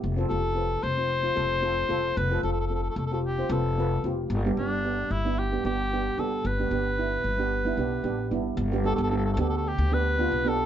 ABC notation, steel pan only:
X:1
M:4/4
L:1/16
Q:"Swing 16ths" 1/4=112
K:Gmix
V:1 name="Steel pan"
z [CFA] [CFG] z [CFB]2 z [CFc] z [CFc] [CFA] z [CFA] z [CFA]2 | z [CFA] [CFA] z [CFA]2 z [CFG] z [CFc] [CFB] z [CFB] z [CFG]2 | z [B,DG] [B,DG] z [B,DG]2 z [B,DE] z [B,DG] [B,DG] z [B,DG] z [B,DG]2 | z [B,DG] [B,DG] z [B,DE]2 z [B,DG] z [B,DE] [B,DG] z [B,DG] z [B,DE]2 |
z [B,DG] [B,DG] z [B,DG] z [B,DG]2 z2 [B,DG] z [B,DF] z [B,DG]2 |]